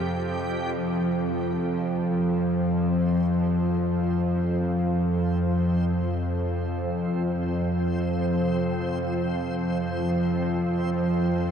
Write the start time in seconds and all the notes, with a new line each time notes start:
Already playing: F2 C3 F3 G4 G5
0.75 F2 F3 C4 C5